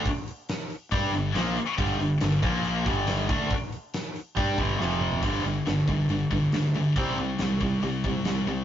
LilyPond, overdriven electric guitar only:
\new Staff \with { instrumentName = "Overdriven electric guitar" } { \clef bass \time 4/4 \key c \major \tempo 4 = 139 r2 <g d' g'>8 <g, d>8 <bes, f bes>8 r8 | <g, d g>8 <g, d>8 <g, d>8 <bes, f bes>4 <g, d g>4 <d a d'>8 | r2 <g d' g'>8 <g, d g>8 <f, c f>4 | <g, d g>8 <g, d>8 <g, d>8 <g, d>8 <g, d>8 <g, d>8 <g, d>8 <g, d>8 |
<c g c'>8 <c g>8 <c g>8 <c g>8 <c g>8 <c g>8 <c g>8 <c g>8 | }